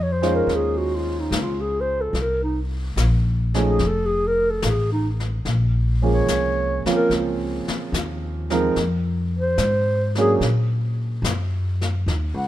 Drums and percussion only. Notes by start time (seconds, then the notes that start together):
0.23 snare
0.49 brush sweep, snare
1.32 snare, hi-hat pedal
2.14 brush sweep, snare
2.97 snare, hi-hat pedal
3.54 snare
3.79 brush sweep, snare
4.62 snare, hi-hat pedal
5.20 snare
5.45 brush sweep, snare
6.28 snare, hi-hat pedal
6.86 snare
7.11 brush sweep, snare
7.68 snare
7.94 snare, hi-hat pedal
8.50 snare
8.76 brush sweep, snare
9.58 snare, hi-hat pedal
10.15 snare
10.41 brush sweep, snare
11.24 snare, hi-hat pedal
11.81 snare
12.08 brush sweep, snare